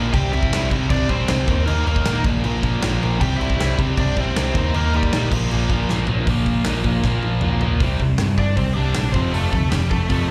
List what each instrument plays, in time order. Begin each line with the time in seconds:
Already playing: distorted electric guitar A#2 D3 F3 A#3 F4, overdriven electric guitar A#2 F3 A#3
0.13 picked electric bass C2, overdriven electric guitar C3 G3 C4, distorted electric guitar E4, lead electric guitar G4 G5, kick, crash
0.33 picked electric bass C2, overdriven electric guitar C3 G3 C4, lead electric guitar E4 E5, crash
0.43 kick
0.53 picked electric bass C2, overdriven electric guitar C3 G3 C4, snare, crash
0.69 picked electric bass C2, overdriven electric guitar C3 G3 C4, distorted electric guitar E4, kick, crash
0.89 picked electric bass C2, overdriven electric guitar C3 G3 C4, lead electric guitar D4 D5, kick, crash
1.09 picked electric bass A#1, overdriven electric guitar C3 G3 C4, lead electric guitar C4 C5, kick, crash
1.28 picked electric bass C2, overdriven electric guitar C3 G3 C4, snare, crash
1.47 picked electric bass D#2, overdriven electric guitar D#3 A#3 D#4, distorted electric guitar G3, kick, crash
1.66 picked electric bass D#2, overdriven electric guitar D#3 A#3 D#4, lead electric guitar A#3 A#4, crash
1.86 picked electric bass D#2, overdriven electric guitar D#3 A#3 D#4, lead electric guitar A#3 A#4, crash
1.96 kick
2.05 picked electric bass A#2, overdriven electric guitar D#3 A#3 D#4, distorted electric guitar G3, snare, crash
2.23 picked electric bass A#1, overdriven electric guitar A#2 F3 A#3, distorted electric guitar D3 D4, kick, crash
2.43 picked electric bass A#1, overdriven electric guitar A#2 F3 A#3, crash
2.63 picked electric bass A#1, overdriven electric guitar A#2 F3 A#3, kick, crash
2.81 picked electric bass A#1, overdriven electric guitar A#2 F3 A#3, distorted electric guitar D3, snare, crash
2.85 distorted electric guitar D4
3.00 picked electric bass A#1, overdriven electric guitar A#2 F3 A#3, crash
3.19 picked electric bass C2, overdriven electric guitar C3 G3 C4, lead electric guitar G4 G5, kick, crash
3.24 distorted electric guitar C4 E4
3.37 picked electric bass C2, overdriven electric guitar C3 G3 C4, lead electric guitar E4 E5, crash
3.50 kick
3.57 overdriven electric guitar C3 G3 C4, snare, crash
3.61 picked electric bass C2
3.77 picked electric bass C2, overdriven electric guitar C3 G3 C4, distorted electric guitar E4, kick, crash
3.97 picked electric bass C2, overdriven electric guitar C3 G3 C4, lead electric guitar D4 D5, kick, crash
4.17 picked electric bass A#1, overdriven electric guitar C3 G3 C4, lead electric guitar C4 C5, kick, crash
4.35 picked electric bass C2, overdriven electric guitar C3 G3 C4, snare, crash
4.54 picked electric bass D#2, overdriven electric guitar D#3 A#3 D#4, distorted electric guitar G3, kick, crash
4.73 picked electric bass D#2, overdriven electric guitar D#3 A#3 D#4, lead electric guitar A#3 A#4, crash
4.93 picked electric bass D#2, overdriven electric guitar D#3 A#3 D#4, lead electric guitar G3 G4, crash
5.03 kick
5.12 picked electric bass A#2, overdriven electric guitar D#3 A#3 D#4, distorted electric guitar G3, snare, crash
5.30 picked electric bass A#1, overdriven electric guitar A#2 F3 A#3, distorted electric guitar D3 D4, kick, crash
5.51 picked electric bass A#1, overdriven electric guitar A#2 F3 A#3, crash
5.69 picked electric bass A#1, overdriven electric guitar A#2 F3 A#3, kick, crash
5.89 picked electric bass A#1, overdriven electric guitar A#2 F3 A#3, distorted electric guitar D3 D4, snare
6.07 picked electric bass A#1, overdriven electric guitar A#2 F3 A#3, floor tom
6.26 picked electric bass A#1, overdriven electric guitar A#2 F3 A#3, kick, open hi-hat
6.46 picked electric bass A#1, kick
6.65 picked electric bass A#1, overdriven electric guitar A#2 F3 A#3, snare, open hi-hat
6.84 picked electric bass A#1, overdriven electric guitar A#2 F3 A#3, kick
7.03 picked electric bass A#1, overdriven electric guitar A#2 F3 A#3, kick, snare
7.23 high tom
7.41 picked electric bass A#1, overdriven electric guitar A#2 F3 A#3, mid tom
7.61 overdriven electric guitar A#2 F3 A#3, floor tom
7.80 picked electric bass C2, overdriven electric guitar C3 G3 C4, distorted electric guitar E3 E4, kick, open hi-hat
8.00 picked electric bass C2, overdriven electric guitar C3 G3, kick
8.18 picked electric bass G2, overdriven electric guitar C3, snare, open hi-hat
8.22 overdriven electric guitar G3
8.38 picked electric bass G2, overdriven electric guitar C3 G3, lead electric guitar D4 D5, kick
8.56 picked electric bass C2, overdriven electric guitar C3 G3, lead electric guitar C4 C5, kick, open hi-hat
8.73 overdriven electric guitar C3 G3 C4, lead electric guitar D4 D5
8.78 picked electric bass C2
8.94 picked electric bass A#1, overdriven electric guitar C3 G3, snare, open hi-hat
9.12 picked electric bass F1, overdriven electric guitar F2 C3 F3, distorted electric guitar A3 C4, lead electric guitar C4 C5, kick
9.17 distorted electric guitar F4
9.31 picked electric bass F1, overdriven electric guitar F2, lead electric guitar A3 A4, open hi-hat
9.36 overdriven electric guitar C3 F3
9.50 picked electric bass D2, lead electric guitar A4, kick
9.55 overdriven electric guitar F2 C3, lead electric guitar A3
9.70 picked electric bass F1, overdriven electric guitar F2 C3, lead electric guitar G4, snare, open hi-hat
9.75 lead electric guitar G3
9.90 picked electric bass F1, overdriven electric guitar F2 C3, lead electric guitar A3 A4, kick
10.09 picked electric bass F1, overdriven electric guitar F2 C3 F3, lead electric guitar A3 A4, kick, open hi-hat